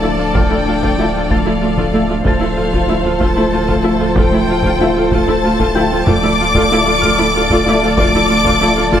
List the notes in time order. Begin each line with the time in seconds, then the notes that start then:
Already playing: D1 F3 A3 D4 E4 A4 D5 A5 E6
0.01 D2 A3 E4 F4
0.18 D2 A3 F4
0.33 D2 A3 F4 G5 F6, taiko
0.50 D2 A3 E4
0.66 D2 A3 F4
0.83 D2 A3 F4, taiko
0.97 D2 A3 E4 F4
1.15 D2 A3 F4
1.30 D2 A3 F4 F5 A6, taiko
1.45 D2 A3 E4
1.61 D2 A3 F4
1.77 D2 A3 F4, taiko
1.92 D2 A3 E4 F4
2.08 D2 A3 F4
2.24 D1 D2 F3 A3 F4 A4 C5 F5 A5 A6, taiko
2.40 D2 A3 E4
2.57 D2 A3 F4
2.72 D2 A3 F4, taiko
2.88 D2 A3 E4 F4
3.04 D2 A3 F4
3.20 D2 A3 F4 A5, taiko
3.36 D2 A3 E4
3.52 D2 A3 F4
3.67 D2 A3 F4, taiko
3.84 D2 A3 E4 F4
4.00 D2 A3 F4
4.15 D2 A3 F4 G5, taiko
4.31 D2 A3 E4
4.47 D2 A3 F4
4.63 D2 A3 F4, taiko
4.79 D2 A3 E4 F4
4.95 D2 A3 F4
5.11 D2 A3 F4 A5, taiko
5.28 D2 A3 E4
5.43 D2 A3 F4
5.59 D2 A3 F4, taiko
5.75 D2 A3 E4 F4 G5 G6
5.92 D2 A3 F4
6.06 D1 D2 F3 A3 F4 A4 D5 D6, taiko
6.23 D2 A3 E4
6.39 D2 A3 F4
6.54 D2 A3 F4, taiko
6.71 D2 A3 E4 F4
6.86 D2 A3 F4
7.01 D2 A3 F4 F6, taiko
7.18 D2 A3 E4
7.35 D2 A3 F4
7.50 D2 A3 F4, taiko
7.66 D2 A3 E4 F4
7.82 D2 A3 F4
7.96 D2 A3 F4 D6, taiko
8.14 D2 A3 E4
8.29 D2 A3 F4
8.45 D2 A3 F4, taiko
8.61 D2 A3 E4 F4
8.75 D2 A3 F4
8.91 D2 A3 F4 A5, taiko